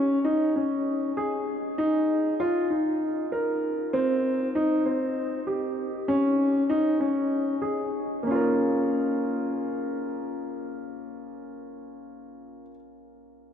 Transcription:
0, 0, Header, 1, 2, 480
1, 0, Start_track
1, 0, Tempo, 614125
1, 1396, Time_signature, 7, 3, 24, 8
1, 10578, End_track
2, 0, Start_track
2, 0, Title_t, "Grand piano"
2, 0, Program_c, 0, 0
2, 0, Note_on_c, 0, 61, 87
2, 128, Note_off_c, 0, 61, 0
2, 192, Note_on_c, 0, 63, 78
2, 400, Note_off_c, 0, 63, 0
2, 437, Note_on_c, 0, 61, 54
2, 852, Note_off_c, 0, 61, 0
2, 915, Note_on_c, 0, 68, 68
2, 1331, Note_off_c, 0, 68, 0
2, 1393, Note_on_c, 0, 63, 83
2, 1810, Note_off_c, 0, 63, 0
2, 1875, Note_on_c, 0, 65, 82
2, 2083, Note_off_c, 0, 65, 0
2, 2113, Note_on_c, 0, 63, 56
2, 2530, Note_off_c, 0, 63, 0
2, 2596, Note_on_c, 0, 70, 66
2, 3011, Note_off_c, 0, 70, 0
2, 3074, Note_on_c, 0, 60, 82
2, 3490, Note_off_c, 0, 60, 0
2, 3558, Note_on_c, 0, 63, 81
2, 3764, Note_off_c, 0, 63, 0
2, 3796, Note_on_c, 0, 60, 61
2, 4210, Note_off_c, 0, 60, 0
2, 4275, Note_on_c, 0, 67, 65
2, 4688, Note_off_c, 0, 67, 0
2, 4754, Note_on_c, 0, 61, 81
2, 5167, Note_off_c, 0, 61, 0
2, 5233, Note_on_c, 0, 63, 82
2, 5440, Note_off_c, 0, 63, 0
2, 5473, Note_on_c, 0, 61, 60
2, 5886, Note_off_c, 0, 61, 0
2, 5953, Note_on_c, 0, 68, 60
2, 6366, Note_off_c, 0, 68, 0
2, 6433, Note_on_c, 0, 58, 59
2, 6463, Note_on_c, 0, 61, 60
2, 6494, Note_on_c, 0, 65, 68
2, 6527, Note_on_c, 0, 70, 67
2, 9867, Note_off_c, 0, 58, 0
2, 9898, Note_off_c, 0, 61, 0
2, 9928, Note_off_c, 0, 65, 0
2, 9961, Note_off_c, 0, 70, 0
2, 10578, End_track
0, 0, End_of_file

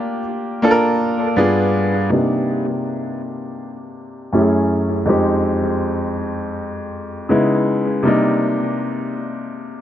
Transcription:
0, 0, Header, 1, 2, 480
1, 0, Start_track
1, 0, Key_signature, -3, "minor"
1, 0, Tempo, 740741
1, 1370, Time_signature, 4, 2, 24, 8
1, 6359, End_track
2, 0, Start_track
2, 0, Title_t, "Grand piano"
2, 0, Program_c, 0, 0
2, 0, Control_c, 0, 64, 127
2, 0, Note_on_c, 0, 58, 84
2, 0, Note_on_c, 0, 62, 77
2, 0, Note_on_c, 0, 65, 81
2, 0, Note_on_c, 0, 67, 94
2, 118, Note_off_c, 0, 62, 0
2, 121, Note_off_c, 0, 65, 0
2, 123, Note_off_c, 0, 67, 0
2, 137, Note_off_c, 0, 58, 0
2, 403, Note_on_c, 0, 58, 88
2, 410, Note_on_c, 0, 62, 78
2, 413, Note_on_c, 0, 65, 80
2, 418, Note_on_c, 0, 69, 79
2, 456, Note_off_c, 0, 69, 0
2, 460, Note_on_c, 0, 70, 96
2, 880, Note_off_c, 0, 62, 0
2, 883, Note_off_c, 0, 65, 0
2, 884, Note_on_c, 0, 43, 87
2, 886, Note_off_c, 0, 58, 0
2, 888, Note_on_c, 0, 59, 75
2, 890, Note_on_c, 0, 62, 75
2, 893, Note_on_c, 0, 65, 80
2, 897, Note_on_c, 0, 68, 95
2, 899, Control_c, 0, 64, 0
2, 915, Note_off_c, 0, 70, 0
2, 1008, Control_c, 0, 64, 127
2, 1271, Note_off_c, 0, 43, 0
2, 1273, Note_off_c, 0, 59, 0
2, 1274, Note_off_c, 0, 62, 0
2, 1275, Note_off_c, 0, 65, 0
2, 1277, Note_off_c, 0, 68, 0
2, 1358, Note_on_c, 0, 48, 66
2, 1365, Note_on_c, 0, 58, 58
2, 1372, Note_on_c, 0, 62, 60
2, 1379, Note_on_c, 0, 63, 58
2, 1380, Control_c, 0, 64, 0
2, 1387, Note_on_c, 0, 67, 72
2, 1504, Control_c, 0, 64, 127
2, 2778, Note_off_c, 0, 48, 0
2, 2782, Note_off_c, 0, 58, 0
2, 2785, Note_off_c, 0, 62, 0
2, 2788, Note_off_c, 0, 63, 0
2, 2792, Note_off_c, 0, 67, 0
2, 2803, Note_on_c, 0, 42, 60
2, 2806, Note_on_c, 0, 57, 59
2, 2810, Note_on_c, 0, 61, 58
2, 2813, Note_on_c, 0, 64, 59
2, 2816, Note_on_c, 0, 67, 54
2, 2817, Control_c, 0, 64, 0
2, 2855, Note_off_c, 0, 67, 0
2, 2859, Note_on_c, 0, 68, 72
2, 2943, Control_c, 0, 64, 127
2, 3276, Note_on_c, 0, 41, 64
2, 3283, Note_on_c, 0, 56, 59
2, 3286, Note_off_c, 0, 42, 0
2, 3288, Note_off_c, 0, 57, 0
2, 3289, Note_on_c, 0, 60, 61
2, 3290, Note_off_c, 0, 61, 0
2, 3291, Note_off_c, 0, 64, 0
2, 3297, Control_c, 0, 64, 0
2, 3297, Note_on_c, 0, 63, 61
2, 3303, Note_on_c, 0, 67, 74
2, 3314, Note_off_c, 0, 68, 0
2, 3426, Control_c, 0, 64, 127
2, 4697, Note_off_c, 0, 41, 0
2, 4700, Note_off_c, 0, 56, 0
2, 4703, Note_off_c, 0, 60, 0
2, 4708, Note_off_c, 0, 63, 0
2, 4710, Note_off_c, 0, 67, 0
2, 4724, Note_on_c, 0, 49, 67
2, 4729, Note_on_c, 0, 56, 58
2, 4731, Note_on_c, 0, 59, 60
2, 4736, Note_on_c, 0, 63, 60
2, 4739, Control_c, 0, 64, 0
2, 4739, Note_on_c, 0, 64, 72
2, 4860, Control_c, 0, 64, 127
2, 5202, Note_on_c, 0, 48, 65
2, 5207, Note_off_c, 0, 49, 0
2, 5209, Note_off_c, 0, 56, 0
2, 5209, Note_on_c, 0, 55, 62
2, 5211, Note_off_c, 0, 59, 0
2, 5213, Note_off_c, 0, 63, 0
2, 5214, Note_off_c, 0, 64, 0
2, 5216, Note_on_c, 0, 58, 63
2, 5219, Control_c, 0, 64, 0
2, 5223, Note_on_c, 0, 62, 61
2, 5229, Note_on_c, 0, 63, 77
2, 5346, Control_c, 0, 64, 127
2, 6359, Note_off_c, 0, 48, 0
2, 6359, Note_off_c, 0, 55, 0
2, 6359, Note_off_c, 0, 58, 0
2, 6359, Note_off_c, 0, 62, 0
2, 6359, Note_off_c, 0, 63, 0
2, 6359, End_track
0, 0, End_of_file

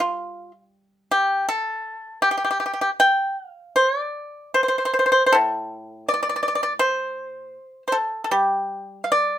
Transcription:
0, 0, Header, 1, 2, 480
1, 0, Start_track
1, 0, Tempo, 755668
1, 462, Time_signature, 2, 2, 24, 8
1, 1909, Tempo, 787402
1, 3349, Tempo, 742574
1, 5269, Tempo, 786370
1, 5908, End_track
2, 0, Start_track
2, 0, Title_t, "Pipa"
2, 0, Program_c, 0, 105
2, 0, Note_on_c, 0, 55, 44
2, 0, Note_on_c, 0, 65, 57
2, 324, Note_off_c, 0, 65, 0
2, 708, Note_on_c, 0, 67, 62
2, 927, Note_off_c, 0, 67, 0
2, 937, Note_off_c, 0, 55, 0
2, 944, Note_on_c, 0, 69, 67
2, 1398, Note_off_c, 0, 69, 0
2, 1410, Note_on_c, 0, 67, 67
2, 1459, Note_off_c, 0, 67, 0
2, 1467, Note_on_c, 0, 67, 48
2, 1501, Note_off_c, 0, 67, 0
2, 1509, Note_on_c, 0, 67, 46
2, 1545, Note_off_c, 0, 67, 0
2, 1553, Note_on_c, 0, 67, 42
2, 1584, Note_off_c, 0, 67, 0
2, 1592, Note_on_c, 0, 67, 47
2, 1644, Note_off_c, 0, 67, 0
2, 1650, Note_on_c, 0, 67, 38
2, 1680, Note_off_c, 0, 67, 0
2, 1688, Note_on_c, 0, 67, 42
2, 1730, Note_off_c, 0, 67, 0
2, 1737, Note_on_c, 0, 67, 39
2, 1779, Note_off_c, 0, 67, 0
2, 1787, Note_on_c, 0, 67, 51
2, 1836, Note_off_c, 0, 67, 0
2, 1904, Note_on_c, 0, 79, 73
2, 2203, Note_off_c, 0, 79, 0
2, 2203, Note_on_c, 0, 77, 73
2, 2365, Note_off_c, 0, 77, 0
2, 2367, Note_on_c, 0, 72, 66
2, 2508, Note_off_c, 0, 72, 0
2, 2508, Note_on_c, 0, 74, 66
2, 2844, Note_off_c, 0, 74, 0
2, 2846, Note_on_c, 0, 72, 62
2, 2892, Note_off_c, 0, 72, 0
2, 2900, Note_on_c, 0, 72, 43
2, 2924, Note_off_c, 0, 72, 0
2, 2932, Note_on_c, 0, 72, 47
2, 2984, Note_off_c, 0, 72, 0
2, 2991, Note_on_c, 0, 72, 40
2, 3028, Note_off_c, 0, 72, 0
2, 3035, Note_on_c, 0, 72, 47
2, 3078, Note_off_c, 0, 72, 0
2, 3085, Note_on_c, 0, 72, 39
2, 3112, Note_off_c, 0, 72, 0
2, 3119, Note_on_c, 0, 72, 42
2, 3153, Note_off_c, 0, 72, 0
2, 3160, Note_on_c, 0, 72, 43
2, 3190, Note_off_c, 0, 72, 0
2, 3197, Note_on_c, 0, 72, 52
2, 3260, Note_off_c, 0, 72, 0
2, 3286, Note_on_c, 0, 72, 52
2, 3323, Note_on_c, 0, 69, 70
2, 3336, Note_on_c, 0, 45, 48
2, 3338, Note_off_c, 0, 72, 0
2, 3797, Note_off_c, 0, 69, 0
2, 3813, Note_on_c, 0, 74, 67
2, 3838, Note_off_c, 0, 74, 0
2, 3846, Note_on_c, 0, 74, 48
2, 3896, Note_off_c, 0, 74, 0
2, 3904, Note_on_c, 0, 74, 51
2, 3940, Note_off_c, 0, 74, 0
2, 3948, Note_on_c, 0, 74, 45
2, 3982, Note_off_c, 0, 74, 0
2, 3990, Note_on_c, 0, 74, 47
2, 4026, Note_off_c, 0, 74, 0
2, 4034, Note_on_c, 0, 74, 43
2, 4060, Note_off_c, 0, 74, 0
2, 4067, Note_on_c, 0, 74, 48
2, 4108, Note_off_c, 0, 74, 0
2, 4115, Note_on_c, 0, 74, 43
2, 4157, Note_off_c, 0, 74, 0
2, 4164, Note_on_c, 0, 74, 54
2, 4226, Note_off_c, 0, 74, 0
2, 4271, Note_on_c, 0, 72, 76
2, 4777, Note_off_c, 0, 45, 0
2, 4935, Note_off_c, 0, 72, 0
2, 4971, Note_on_c, 0, 72, 51
2, 5000, Note_on_c, 0, 69, 66
2, 5020, Note_off_c, 0, 72, 0
2, 5197, Note_off_c, 0, 69, 0
2, 5208, Note_on_c, 0, 69, 51
2, 5252, Note_off_c, 0, 69, 0
2, 5253, Note_on_c, 0, 55, 52
2, 5254, Note_on_c, 0, 67, 65
2, 5697, Note_on_c, 0, 77, 49
2, 5742, Note_off_c, 0, 77, 0
2, 5744, Note_on_c, 0, 74, 74
2, 5908, Note_off_c, 0, 55, 0
2, 5908, Note_off_c, 0, 67, 0
2, 5908, Note_off_c, 0, 74, 0
2, 5908, End_track
0, 0, End_of_file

